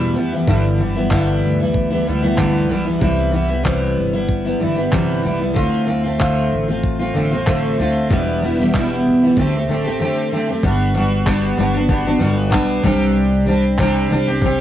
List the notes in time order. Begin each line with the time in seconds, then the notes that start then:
Already playing: B1 E2 B2 E3 G3 B3 E4
0.01 shaker
0.14 F1 E3 G3 B3 E4, shaker
0.32 E3 G3 B3 E4, shaker
0.47 G1 G2 D3 E3 G3 B3 E4, kick, shaker
0.64 shaker
0.78 E3 G3 B3 E4, shaker
0.95 E3 G3 B3 E4, shaker
1.10 G2 D3 E3 G3 B3 E4, kick, clap, shaker
1.28 shaker
1.44 D2
1.59 E3 G3 B3 E4, shaker
1.74 kick, shaker
1.90 E3 G3 B3 E4, shaker
2.06 D2 E3 G3 B3 E4, shaker
2.22 E3 G3 B3 E4, shaker
2.36 G2 D3 E3 G3 B3 E4, kick, clap, shaker
2.56 shaker
2.69 B1 E3 G3 B3 E4, shaker
2.85 E3 G3 B3 E4, shaker
3.00 C2 C3 E3 G3 B3 E4, kick, shaker
3.20 shaker
3.31 E3 G3 B3 E4, shaker
3.48 G3 B3 E4, shaker
3.63 C3 E3 G3 B3 E4, kick, clap, shaker
3.83 shaker
3.98 G1
4.13 G3 B3 E4, shaker
4.29 kick, shaker
4.45 G3 B3 E4, shaker
4.60 G1 E3 G3 B3 E4, shaker
4.76 G3 B3 E4, shaker
4.91 C3 E3 G3 B3 E4, kick, clap, shaker
5.11 shaker
5.23 C2 E3 G3 B3 E4, shaker
5.39 G3 B3 E4, shaker
5.53 D2 D3 A3 C4 F4, kick, shaker
5.74 shaker
5.85 D3 A3 C4 F4, shaker
6.04 A3 C4 F4, shaker
6.18 D3 A3 C4 F4, kick, clap, shaker
6.38 shaker
6.53 A1
6.68 A3 C4 F4, shaker
6.83 kick, shaker
6.99 A3 C4 F4, shaker
7.13 A1 D3 A3 C4 F4, shaker
7.31 C4 F4, shaker
7.35 A3
7.46 D3 A3 C4 F4, kick, clap, shaker
7.64 shaker
7.78 D2 D3 A3 C4 F4, shaker
7.96 shaker
8.09 E1 E2 B2 E3 G3 B3 E4, kick, shaker
8.27 shaker
8.41 E3 G3 B3 E4, shaker
8.59 E3 G3 B3 E4, shaker
8.73 E2 B2 E3 G3 B3 E4, kick, clap, shaker
8.92 shaker
9.06 B1, shaker
9.23 E3 G3 B3 E4, shaker
9.37 D2 D3 A3 C4 G4, kick, shaker
9.55 A3 C4 G4, shaker
9.68 A1 D3 A3 C4 G4, shaker
9.84 A3 C4 G4
9.89 shaker
9.99 D3 A3 C4 G4
10.31 D3 A3 C4 G4
10.47 A3 C4 G4
10.63 G1 G3 B3 D4 F#4, kick, shaker
10.82 shaker
10.94 G3 B3 D4 F#4, tambourine
11.14 shaker
11.26 G3 B3 D4 F#4, kick, clap, shaker
11.45 shaker
11.57 G1 G3 B3 D4 F#4, tambourine, shaker
11.74 B3 D4 F#4, shaker
11.88 G3 B3 D4 F#4, kick, shaker
12.05 B3 D4 F#4, shaker
12.18 G1 G3 B3 D4 F#4, tambourine, shaker
12.38 shaker
12.50 B1 G3 B3 D4 F#4, kick, clap, shaker
12.70 shaker
12.83 C2 C3 G3 C4 D4 G4, kick, tambourine
13.02 shaker
13.16 shaker
13.33 shaker
13.46 G3 C4 D4 G4, tambourine
13.65 shaker
13.78 C3 G3 C4 D4 G4, kick, clap, shaker
13.97 shaker
14.09 C2 G3 C4 D4 G4, tambourine, shaker
14.27 C4 D4 G4, shaker
14.42 G3 C4 D4 G4, kick, shaker